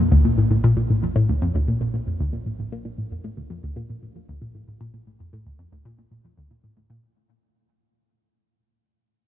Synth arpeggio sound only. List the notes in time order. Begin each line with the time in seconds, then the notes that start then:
0.12 D2
0.25 A#2
0.38 A2
0.51 A2
0.64 A#2
0.77 A#2
0.90 A2
1.03 F2
1.16 A2
1.29 D2
1.42 F2
1.55 D2
1.68 A#2
1.81 A#2
1.94 A#2
2.07 F2
2.20 D2
2.33 A#2
2.46 A2
2.59 A2
2.72 A#2
2.85 A#2
2.98 A2
3.11 F2
3.24 A2
3.37 D2
3.50 F2
3.63 D2
3.76 A#2
3.90 A#2
4.03 A#2
4.16 F2
4.29 D2
4.42 A#2
4.55 A2
4.68 A2
4.81 A#2
4.94 A#2
5.07 A2
5.20 F2
5.33 A2
5.46 D2
5.59 F2
5.72 D2
5.85 A#2
5.98 A#2
6.11 A#2
6.24 F2
6.38 D2
6.51 A#2
6.64 A2
6.77 A2
6.90 A#2